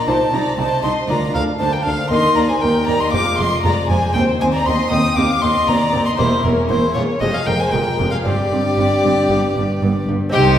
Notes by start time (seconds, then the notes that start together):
0.07 C2 C3 D#4 F4 C5 A5
0.32 C2 C3 D#4 D5 A#5
0.57 C2 C3 D#4 C5 A5
0.83 C2 C3 D#4 D#5 C6
1.08 D2 D4 F4 A#4 D5 A#5
1.33 D2 D4 A4 F5
1.59 D2 D4 C5 A5
1.72 A#4 G5
1.85 D2 D4 A4 F5
2.10 D#2 A#3 D#4 A#4 D#5 C6
2.36 D#2 A#3 D5 A#5
2.48 C5 G#5
2.61 D#2 A#3 A#4 G5
2.87 D#2 A#3 D5 A#5
3.00 D#5 C6
3.12 F1 F2 G#3 C4 F4 F5 D6
3.37 F1 F2 G#3 D#5 C6
3.63 F1 F2 G#3 D5 A#5
3.88 F1 F2 G#3 C5 G#5
4.14 D#2 C4 C5 G5
4.39 D#2 C4 C5 G#5
4.53 D5 A#5
4.65 D#2 C4 D#5 C6
4.90 D#2 C4 G5 D#6
5.16 D#2 C4 G4 F5 D6
5.42 D#2 C4 D#5 C6
5.67 D#2 C4 D5 A#5
5.93 D#2 C4
6.06 D#5 C6
6.18 E1 E2 A#3 C4 E4 G4 C5
6.44 E1 E2 A#3 C#4 A#4
6.69 E1 E2 A#3 E4 C5
6.94 E1 E2 A#3 F4 C#5
7.20 F1 F2 G#3 C4 G4 G#4 D#5
7.33 G#4 F5
7.46 F1 F2 G#3 A#4 G5
7.59 C5 G#5
7.71 F1 F2 G#3 A#4 G5
7.98 F1 F2 G#3
8.11 G#4 F5
8.25 G1 G2 C4 G4 D5
8.52 G1 G2 C4
8.77 G1 G2 C4
9.03 G1 G2 C4
9.30 G1 G2 B3 D4 G4
9.55 G1 G2 B3
9.82 G1 G2 B3
10.07 G1 G2 B3
10.29 C2 C4 D#4 G4 G5
10.34 C3 D#4 G4